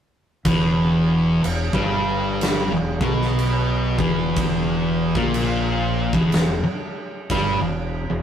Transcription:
0.45 E1 E2 E3, kick, crash
1.44 E1 E2, crash
1.73 G1 G2 G3, kick
2.41 snare, crash
2.71 E1 E2
3.01 B1 B2 B3, kick
3.22 snare
3.39 crash
3.98 E1 E2 E3, kick
4.36 kick, crash
5.15 A#1 A#2 A#3, kick
5.34 crash
6.13 E1 E2 E3, kick
6.32 E1 E2, snare, crash
6.63 muted fingered electric bass stroke, muted distorted electric guitar stroke
7.30 G1 G2 G3, kick, crash
7.61 E1 E2
8.10 E1 E2

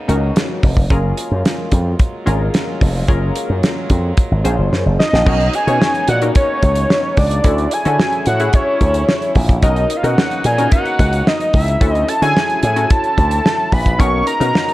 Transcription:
Already playing: C#3 A#3 B3 D#4
0.08 C#2 C#4 D#4 F#4 A#4, closed hi-hat
0.36 snare, closed hi-hat
0.63 F1, kick, open hi-hat
0.77 kick
0.90 F#1 F#3 G#3 A#3 C#4 F4 G#4 A#4, kick, closed hi-hat
1.17 closed hi-hat
1.31 F#2
1.45 snare, closed hi-hat
1.72 F2, kick, closed hi-hat
1.99 kick, closed hi-hat
2.26 G#1 C#4 F4 G#4 A#4, closed hi-hat
2.54 snare, closed hi-hat
2.81 F1, kick, open hi-hat
3.08 F#1 C#4 F4 G#4 A#4, kick, closed hi-hat
3.36 closed hi-hat
3.50 F#2
3.63 snare, closed hi-hat
3.90 F2, kick, closed hi-hat
4.17 kick, closed hi-hat
4.31 G#1
4.44 A#1 C#4 F4 G#4 C5, closed hi-hat
4.58 F#1
4.72 F#2, snare
4.86 F#1
4.99 D#5, snare
5.13 A#1, snare
5.26 B1 C#3 A#3 B3 C#4 D#4 F#4 A#4, kick, crash
5.41 closed hi-hat
5.54 G#5, closed hi-hat
5.67 B2 C#4 D#4 F#4 C#5, closed hi-hat
5.82 snare
5.95 closed hi-hat
6.08 A#2 F#5, closed hi-hat
6.22 C#4 D#4 F#4 A#4, closed hi-hat
6.35 C#5, kick, closed hi-hat
6.63 C#2, kick, closed hi-hat
6.75 closed hi-hat
6.90 snare
7.17 C#2 D5, kick, open hi-hat
7.31 closed hi-hat
7.44 D2 D3 F#3 C#4 E4 F#4 A4, kick, closed hi-hat
7.58 closed hi-hat
7.71 G#5, closed hi-hat
7.85 D3 C#4 E4 F#4 A4, closed hi-hat
8.00 snare
8.13 closed hi-hat
8.26 A2 F#5, closed hi-hat
8.40 C#4 E4 F#4 G#4, closed hi-hat
8.53 C#5, kick, closed hi-hat
8.81 D2, kick, closed hi-hat
8.94 closed hi-hat
9.09 snare
9.22 closed hi-hat
9.35 A#1, kick, open hi-hat
9.49 kick, closed hi-hat
9.62 B1 C#3 A#3 B3 C#4 D#4 F#4 A#4 D#5, kick, closed hi-hat
9.76 closed hi-hat
9.90 closed hi-hat
9.97 F5
10.03 B2 C#4 D#4 F#4 A#4 F#5, closed hi-hat
10.18 snare
10.31 closed hi-hat
10.44 A#2 G#5, closed hi-hat
10.58 C#4 D#4 F#4 A#4, closed hi-hat
10.72 F#5, kick, closed hi-hat
10.86 closed hi-hat
10.99 C#2, kick, closed hi-hat
11.13 closed hi-hat
11.27 D#5, snare
11.41 closed hi-hat
11.53 C#2 E5, kick, open hi-hat
11.68 closed hi-hat
11.81 D2 D3 F#3 C#4 E4 F#4 A4, kick, closed hi-hat
11.92 D#5, closed hi-hat
12.08 A5, closed hi-hat
12.22 D3 C#4 E4 F#4 A4 G#5, closed hi-hat
12.37 snare
12.50 closed hi-hat
12.63 A2 G#5, closed hi-hat
12.76 C#4 E4 F#4 A4, closed hi-hat
12.90 A5, kick, closed hi-hat
13.04 closed hi-hat
13.18 D2, kick, closed hi-hat
13.31 closed hi-hat
13.46 snare
13.72 A#1 B5, kick, open hi-hat
13.86 kick, closed hi-hat
13.99 B1 C#3 A#3 B3 C#4 D#4 F#4 A#4 C#6, kick, closed hi-hat
14.27 A#5, closed hi-hat
14.40 B2 C#4 D#4 F#4 A#4, closed hi-hat
14.55 snare
14.69 closed hi-hat

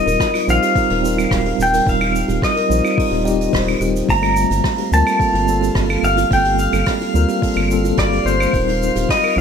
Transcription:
Already playing: G3 C4 D#4 F4 A#4 D#5
0.06 D#1 A#4, open hi-hat, shaker
0.20 kick, cross-stick, open hi-hat, shaker
0.34 F4, open hi-hat, claves
0.47 A#1 G3 C4 D#4 F4 C5 F5, shaker
0.62 G4, open hi-hat, shaker
0.75 G3 C4 D#4 F4 A#4, kick, open hi-hat, shaker
0.90 D#1 A#4, open hi-hat
1.02 G3 C4 D#4 F4, shaker
1.06 A#4
1.17 F4, open hi-hat, claves, shaker
1.31 D#1, kick, cross-stick, open hi-hat, shaker
1.46 G4, open hi-hat
1.58 D#1, shaker
1.63 G5
1.74 A#4, open hi-hat, shaker
1.84 D#1 G3 C4 D#4 F4, kick, open hi-hat
1.89 A#4 F5, shaker
2.01 F4, open hi-hat, claves
2.16 shaker
2.28 D#1 G4, open hi-hat, shaker
2.42 D#5, kick, cross-stick, open hi-hat, shaker
2.56 A#4, open hi-hat
2.69 A#1 G3 C4 D#4 F4 C5, shaker
2.84 F4, open hi-hat, claves, shaker
2.97 G3 C4 D#4 F4 A#4, kick, open hi-hat, shaker
3.11 D#1 G4, open hi-hat
3.24 G3 C4 D#4 F4 D#5, shaker
3.28 G4
3.41 open hi-hat, shaker
3.53 D#1 C5, kick, cross-stick, open hi-hat, shaker
3.68 open hi-hat, claves
3.80 D#1 G4, shaker
3.96 open hi-hat, shaker
4.07 G1 G3 A#3 F4 F5 A#5 F6, kick, open hi-hat, shaker
4.12 A3
4.23 A4, open hi-hat, claves
4.36 shaker
4.50 G1 F4, open hi-hat, shaker
4.64 kick, cross-stick, open hi-hat, shaker
4.78 G4, open hi-hat
4.91 D2 G3 A#3 C4 F4 A#4 A5, shaker
5.06 A4, open hi-hat, claves, shaker
5.19 G3 A#3 C4 F4 A4, kick, open hi-hat, shaker
5.33 G1 F4, open hi-hat
5.46 G3 A#3 C4 F4, shaker
5.50 A4
5.61 G4, open hi-hat, shaker
5.75 G1, kick, cross-stick, open hi-hat, shaker
5.89 A4, open hi-hat, claves
6.03 G1 F5, shaker
6.17 F4, open hi-hat, shaker
6.30 G1 G3 A#3 C4 F4 G5, kick, open hi-hat, shaker
6.34 A4
6.45 G4, open hi-hat
6.59 F5, shaker
6.72 G1 A4, open hi-hat, claves, shaker
6.86 kick, cross-stick, open hi-hat, shaker
7.01 F4, open hi-hat
7.13 D2 G3 A#3 C4 F4 A#4, shaker
7.28 G4, open hi-hat, shaker
7.42 G3 A#3 C4 F4 A4, kick, open hi-hat, shaker
7.56 G1 A4, open hi-hat, claves
7.69 G3 A#3 C4 F4, shaker
7.73 A4
7.84 F4, open hi-hat, shaker
7.97 G1 D5, kick, cross-stick, open hi-hat, shaker
8.13 G4, open hi-hat
8.25 G1 C5, shaker
8.40 A4, open hi-hat, claves, shaker
8.52 D#1 G3 C4 D#4 F4, kick, open hi-hat, shaker
8.56 A#4
8.68 F4, open hi-hat
8.83 shaker
8.96 D#1 G4, open hi-hat, shaker
9.09 D#5, kick, cross-stick, open hi-hat, shaker
9.24 A#4, open hi-hat, claves
9.36 A#1 G3 C4 D#4 F4

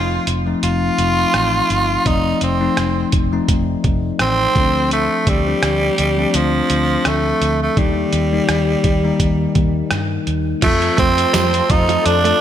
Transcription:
Already playing: F1 F3 A3 C4 D#4 F4
0.27 F1, closed hi-hat
0.46 F3 A3 C4 D#4
0.63 F1 F4, closed hi-hat
0.98 F1, closed hi-hat
1.34 A1, cross-stick, closed hi-hat
1.70 G1, closed hi-hat
2.05 F1 F3 A3 C4 D#4 D5, kick, closed hi-hat
2.41 F1 C4, closed hi-hat
2.60 F3 A3 C4 D#4
2.77 F1, cross-stick, closed hi-hat
3.12 F1, kick, closed hi-hat
3.32 F3 A3 C4 D#4
3.48 F1, kick, closed hi-hat
3.84 F1, kick, closed hi-hat
4.19 A1 C4, cross-stick, closed hi-hat
4.55 D2 F3 A3 C4 D4, kick, closed hi-hat
4.91 A3, closed hi-hat
5.27 D2 G3, kick, closed hi-hat
5.46 F3 A3 C4 D4
5.63 D2, cross-stick, closed hi-hat
5.98 D2, closed hi-hat
6.18 F3 A3 C4 D4
6.34 D2 F3, closed hi-hat
6.70 D2, closed hi-hat
7.05 D2 A3, cross-stick, closed hi-hat
7.41 D2, closed hi-hat
7.63 A3
7.76 D#2 D#3 G3 A#3 D#4, kick, closed hi-hat
8.13 D#2, closed hi-hat
8.32 D#3 G3 A#3 D#4
8.48 D#2, cross-stick, closed hi-hat
8.84 D#2, kick, closed hi-hat
9.04 D#3 G3 A#3 D#4
9.20 D#2, kick, closed hi-hat
9.55 D#2, kick, closed hi-hat
9.91 G2, cross-stick, closed hi-hat
10.27 D#2, closed hi-hat
10.62 F2 F3 A3 C4 F4 A4 C5 A5, kick, closed hi-hat, crash
10.82 muted clean electric guitar stroke, closed hi-hat
10.98 F2 A3 C4, kick, closed hi-hat
11.18 closed hi-hat
11.33 F2 G3, snare, closed hi-hat, tambourine
11.54 closed hi-hat
11.69 F2 D#4, muted clean electric guitar stroke, kick, closed hi-hat
11.89 F3, closed hi-hat
12.06 F2 D4, closed hi-hat
12.25 A3, closed hi-hat

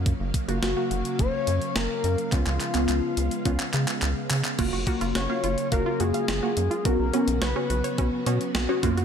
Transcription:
Already playing: F#2 C#3 F#3 A#3 F4 F#4 F5
0.06 kick, closed hi-hat
0.20 F#1
0.34 kick, closed hi-hat
0.48 F#1 A#3 F4 F#4, closed hi-hat
0.63 F#1 F#4, snare, closed hi-hat
0.77 A#3 F#4 F5
0.91 F#1, closed hi-hat
1.05 closed hi-hat
1.19 F#1 C#5, kick, closed hi-hat
1.47 F#2, closed hi-hat
1.62 closed hi-hat
1.76 F#1 A#4, snare, closed hi-hat
2.04 F#2, closed hi-hat
2.18 closed hi-hat
2.32 C#2 G#3 B3 C#4 F4, kick, clap, closed hi-hat
2.46 C#2, clap
2.60 clap, closed hi-hat
2.75 C#2 B3 C#4 F4, clap, closed hi-hat
2.89 C#2, clap, closed hi-hat
3.17 C#2, closed hi-hat
3.31 closed hi-hat
3.45 C#2 B3 C#4 F4, kick, closed hi-hat
3.60 clap
3.73 C#3, clap, closed hi-hat
3.88 clap, closed hi-hat
4.02 C#2, clap, closed hi-hat
4.30 C#3, clap, open hi-hat
4.44 clap, closed hi-hat
4.59 F#1 C#3 F#3 A#3 F4 F#4, kick, closed hi-hat, crash
4.73 F#1 F#4
4.87 A#3 F4 F#4, kick, closed hi-hat
5.01 F#1 F4, closed hi-hat
5.15 F#1 F#4 C#5, snare, closed hi-hat
5.29 A#3 F4 F#4 F5
5.44 F#1 F4, closed hi-hat
5.58 closed hi-hat
5.72 F#1 A#3 F4 F#4 A#4 F5, kick, closed hi-hat
5.86 F4
6.00 F#2 A#3 F4 F#4 G#4, closed hi-hat
6.14 F5, closed hi-hat
6.28 F#1, snare, closed hi-hat
6.43 A#3 F4 F#4
6.57 F#2, closed hi-hat
6.71 F4, closed hi-hat
6.85 B1 C#3 F#3 B3 C#4 F#4 A#4, kick, closed hi-hat
6.99 B1
7.13 B3 C#4 F#4, closed hi-hat
7.28 B1, closed hi-hat
7.42 B1 B4 C#5, snare, closed hi-hat
7.56 B3 C#4 F#4
7.70 B1 F#4, closed hi-hat
7.84 C#5, closed hi-hat
7.98 B1 B3 C#4 F#4, kick, closed hi-hat
8.26 B2 B3 C#4 F#4 C#5, closed hi-hat
8.41 closed hi-hat
8.55 B1 F#4, snare, closed hi-hat
8.69 B3 C#4 F#4 C#5
8.83 F#2 A#3 F4 F#4 F5, kick, closed hi-hat
8.97 F#4, closed hi-hat

